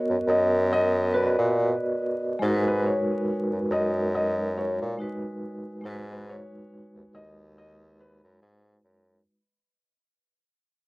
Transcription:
0.00 1.08 B3 medium
0.00 1.09 F#4 medium
0.00 1.11 A#4 medium
0.00 0.24 C#5 medium
0.00 1.12 D#5 medium
0.10 0.17 F#2 soft
0.27 1.33 F#2 medium
0.27 0.67 D#5 medium
0.73 1.10 D#5 medium
1.12 2.42 F#4 soft
1.12 2.41 B4 medium
1.12 1.52 B4 medium
1.17 1.22 D5 soft
1.23 2.47 D#5 medium
1.38 1.73 A#2 medium
2.39 2.97 G#2 loud
2.39 4.93 G#3 medium
2.39 4.95 D#4 medium
2.44 4.96 F#4 medium
2.44 2.52 A#4 medium
2.54 5.00 B4 medium
2.68 2.83 B4 medium
2.86 3.67 C#5 medium
3.52 3.59 F#2 soft
3.71 4.77 F#2 medium
3.71 4.10 D#5 medium
4.15 4.53 D#5 medium
4.57 4.95 C#5 medium
4.81 4.96 A#2 medium
4.97 5.80 G#3 medium
4.97 5.83 D#4 soft
4.97 5.85 F#4 soft
5.01 5.86 B4 medium
5.81 6.40 G#2 loud
5.81 9.21 G#3 medium
5.81 9.23 D#4 medium
5.87 9.24 F#4 medium
5.87 9.26 B4 medium
6.11 6.27 B4 medium
6.29 7.10 C#5 medium
6.95 7.02 D#2 soft
7.13 8.19 D#2 medium
7.13 7.53 D#5 medium
7.58 7.96 D#5 medium
8.00 8.38 B4 medium
8.23 8.38 F#2 medium
8.42 8.77 G#2 medium
8.84 9.20 F#2 medium

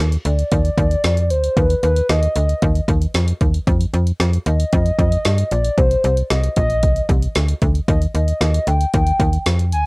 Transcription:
0.00 0.17 D#2 loud
0.12 closed hi-hat medium
0.25 0.44 D2 medium
0.25 1.32 D5 loud
0.25 closed hi-hat medium
0.39 closed hi-hat soft
0.52 0.70 D#2 loud
0.52 kick medium
0.52 closed hi-hat medium
0.65 closed hi-hat medium
0.78 0.96 D#2 loud
0.78 kick medium
0.78 closed hi-hat medium
0.91 closed hi-hat medium
1.04 1.32 F2 medium
1.04 snare loud
1.04 closed hi-hat medium
1.17 closed hi-hat medium
1.30 1.49 D2 medium
1.30 1.58 C5 medium
1.30 closed hi-hat medium
1.44 closed hi-hat soft
1.57 1.75 D#2 loud
1.57 1.82 B4 loud
1.57 kick loud
1.57 closed hi-hat medium
1.70 closed hi-hat medium
1.83 2.02 D#2 loud
1.83 2.07 B4 medium
1.83 closed hi-hat medium
1.96 closed hi-hat medium
2.09 2.28 D#2 loud
2.09 2.34 D#5 loud
2.09 snare loud
2.09 closed hi-hat medium
2.23 closed hi-hat medium
2.36 2.54 D2 medium
2.36 2.85 D#5 loud
2.36 closed hi-hat medium
2.49 closed hi-hat soft
2.62 2.81 D#2 loud
2.62 kick medium
2.62 closed hi-hat medium
2.75 closed hi-hat medium
2.88 3.07 D#2 loud
2.88 kick medium
2.88 closed hi-hat medium
3.02 closed hi-hat medium
3.14 3.33 F2 medium
3.14 snare loud
3.14 closed hi-hat medium
3.28 closed hi-hat medium
3.41 3.59 D#2 medium
3.41 kick medium
3.41 closed hi-hat medium
3.54 closed hi-hat soft
3.67 3.86 F2 loud
3.67 kick loud
3.67 closed hi-hat medium
3.81 closed hi-hat medium
3.94 4.12 F2 loud
3.94 closed hi-hat medium
4.07 closed hi-hat medium
4.20 4.38 F2 loud
4.20 snare loud
4.20 closed hi-hat medium
4.33 closed hi-hat medium
4.46 4.65 D#2 loud
4.46 5.53 D#5 loud
4.46 closed hi-hat medium
4.60 closed hi-hat soft
4.73 4.91 F2 loud
4.73 kick medium
4.73 closed hi-hat medium
4.86 closed hi-hat medium
4.99 5.17 F2 loud
4.99 kick medium
4.99 closed hi-hat medium
5.12 closed hi-hat medium
5.25 5.44 G2 medium
5.25 snare loud
5.25 closed hi-hat medium
5.38 closed hi-hat medium
5.51 5.70 A#1 medium
5.51 5.79 D5 loud
5.51 closed hi-hat medium
5.65 closed hi-hat soft
5.78 5.96 C2 loud
5.78 6.03 C5 loud
5.78 kick loud
5.78 closed hi-hat medium
5.91 closed hi-hat medium
6.04 6.23 C2 loud
6.04 6.16 C5 medium
6.04 closed hi-hat medium
6.17 closed hi-hat medium
6.30 6.49 C2 loud
6.30 6.55 D#5 loud
6.30 snare loud
6.30 closed hi-hat medium
6.44 closed hi-hat medium
6.56 6.85 A#1 loud
6.56 7.06 D#5 loud
6.56 kick medium
6.56 closed hi-hat medium
6.70 closed hi-hat soft
6.83 7.02 C2 loud
6.83 kick medium
6.83 closed hi-hat medium
6.96 closed hi-hat medium
7.09 7.28 C2 loud
7.09 kick medium
7.09 closed hi-hat medium
7.23 closed hi-hat medium
7.35 7.54 D2 loud
7.35 snare loud
7.35 closed hi-hat medium
7.49 closed hi-hat medium
7.62 7.80 D2 loud
7.62 kick medium
7.62 closed hi-hat medium
7.75 closed hi-hat soft
7.88 8.07 D#2 loud
7.88 8.00 D#5 medium
7.88 kick loud
7.88 closed hi-hat medium
8.02 closed hi-hat medium
8.15 8.33 D#2 medium
8.15 8.69 D#5 medium
8.15 closed hi-hat medium
8.28 closed hi-hat medium
8.41 8.59 D#2 loud
8.41 snare loud
8.41 closed hi-hat medium
8.54 closed hi-hat medium
8.67 8.86 D2 loud
8.67 8.93 G5 loud
8.67 closed hi-hat medium
8.81 closed hi-hat soft
8.94 9.12 D#2 loud
8.94 9.43 G5 medium
8.94 kick medium
8.94 closed hi-hat medium
9.07 closed hi-hat medium
9.20 9.38 D#2 loud
9.20 kick medium
9.20 closed hi-hat medium
9.33 closed hi-hat medium
9.46 9.74 F2 medium
9.46 snare loud
9.46 closed hi-hat medium
9.59 closed hi-hat medium
9.72 9.86 D2 medium
9.72 9.86 G#5 loud
9.72 closed hi-hat medium

